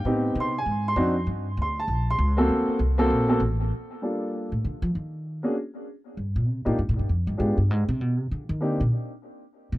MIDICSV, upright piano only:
0, 0, Header, 1, 2, 480
1, 0, Start_track
1, 0, Key_signature, -2, "minor"
1, 0, Tempo, 305810
1, 88, Time_signature, 4, 2, 24, 8
1, 15352, End_track
2, 0, Start_track
2, 0, Title_t, "Upright piano"
2, 0, Program_c, 0, 0
2, 79, Note_on_c, 0, 59, 62
2, 84, Note_on_c, 0, 60, 58
2, 96, Note_on_c, 0, 63, 56
2, 102, Note_on_c, 0, 67, 69
2, 632, Note_on_c, 0, 84, 91
2, 801, Note_off_c, 0, 59, 0
2, 803, Note_off_c, 0, 60, 0
2, 809, Note_off_c, 0, 63, 0
2, 812, Note_off_c, 0, 67, 0
2, 889, Note_off_c, 0, 84, 0
2, 917, Note_on_c, 0, 80, 85
2, 1338, Note_off_c, 0, 80, 0
2, 1383, Note_on_c, 0, 84, 98
2, 1508, Note_on_c, 0, 60, 66
2, 1514, Note_on_c, 0, 62, 62
2, 1517, Note_on_c, 0, 63, 57
2, 1522, Note_on_c, 0, 66, 77
2, 1785, Note_off_c, 0, 60, 0
2, 1788, Note_off_c, 0, 62, 0
2, 1790, Note_off_c, 0, 63, 0
2, 1792, Note_off_c, 0, 66, 0
2, 1979, Note_off_c, 0, 84, 0
2, 2540, Note_on_c, 0, 84, 83
2, 2801, Note_off_c, 0, 84, 0
2, 2818, Note_on_c, 0, 81, 85
2, 3246, Note_off_c, 0, 81, 0
2, 3304, Note_on_c, 0, 84, 100
2, 3719, Note_on_c, 0, 58, 76
2, 3729, Note_on_c, 0, 60, 72
2, 3731, Note_on_c, 0, 66, 74
2, 3736, Note_on_c, 0, 69, 87
2, 3897, Note_off_c, 0, 84, 0
2, 4352, Note_off_c, 0, 58, 0
2, 4357, Note_off_c, 0, 60, 0
2, 4358, Note_off_c, 0, 66, 0
2, 4361, Note_off_c, 0, 69, 0
2, 4678, Note_on_c, 0, 58, 84
2, 4685, Note_on_c, 0, 60, 75
2, 4695, Note_on_c, 0, 66, 73
2, 4695, Note_on_c, 0, 69, 92
2, 5128, Note_off_c, 0, 58, 0
2, 5132, Note_off_c, 0, 60, 0
2, 5145, Note_off_c, 0, 66, 0
2, 5145, Note_off_c, 0, 69, 0
2, 5152, Note_on_c, 0, 58, 75
2, 5155, Note_on_c, 0, 60, 61
2, 5169, Note_on_c, 0, 66, 65
2, 5172, Note_on_c, 0, 69, 81
2, 5326, Note_off_c, 0, 58, 0
2, 5328, Note_off_c, 0, 60, 0
2, 5335, Note_off_c, 0, 66, 0
2, 5336, Note_off_c, 0, 69, 0
2, 6309, Note_on_c, 0, 55, 40
2, 6320, Note_on_c, 0, 58, 39
2, 6326, Note_on_c, 0, 62, 39
2, 6329, Note_on_c, 0, 65, 39
2, 6329, Note_on_c, 0, 69, 46
2, 7030, Note_off_c, 0, 55, 0
2, 7035, Note_off_c, 0, 58, 0
2, 7039, Note_off_c, 0, 62, 0
2, 7040, Note_off_c, 0, 65, 0
2, 7040, Note_off_c, 0, 69, 0
2, 8523, Note_on_c, 0, 58, 50
2, 8532, Note_on_c, 0, 61, 48
2, 8536, Note_on_c, 0, 62, 46
2, 8544, Note_on_c, 0, 66, 48
2, 8546, Note_on_c, 0, 68, 59
2, 8691, Note_off_c, 0, 58, 0
2, 8695, Note_off_c, 0, 61, 0
2, 8697, Note_off_c, 0, 62, 0
2, 8701, Note_off_c, 0, 66, 0
2, 8703, Note_off_c, 0, 68, 0
2, 10440, Note_on_c, 0, 62, 50
2, 10441, Note_on_c, 0, 58, 59
2, 10443, Note_on_c, 0, 63, 53
2, 10449, Note_on_c, 0, 65, 53
2, 10454, Note_on_c, 0, 67, 63
2, 10610, Note_off_c, 0, 62, 0
2, 10611, Note_off_c, 0, 58, 0
2, 10612, Note_off_c, 0, 63, 0
2, 10615, Note_off_c, 0, 65, 0
2, 10617, Note_off_c, 0, 67, 0
2, 11575, Note_on_c, 0, 56, 49
2, 11581, Note_on_c, 0, 62, 44
2, 11583, Note_on_c, 0, 59, 46
2, 11589, Note_on_c, 0, 65, 46
2, 11595, Note_on_c, 0, 67, 57
2, 11855, Note_off_c, 0, 56, 0
2, 11858, Note_off_c, 0, 62, 0
2, 11859, Note_off_c, 0, 59, 0
2, 11862, Note_off_c, 0, 65, 0
2, 11865, Note_off_c, 0, 67, 0
2, 13508, Note_on_c, 0, 58, 49
2, 13519, Note_on_c, 0, 60, 42
2, 13521, Note_on_c, 0, 63, 46
2, 13522, Note_on_c, 0, 62, 45
2, 13529, Note_on_c, 0, 67, 57
2, 13784, Note_off_c, 0, 58, 0
2, 13790, Note_off_c, 0, 60, 0
2, 13791, Note_off_c, 0, 62, 0
2, 13791, Note_off_c, 0, 63, 0
2, 13795, Note_off_c, 0, 67, 0
2, 15352, End_track
0, 0, End_of_file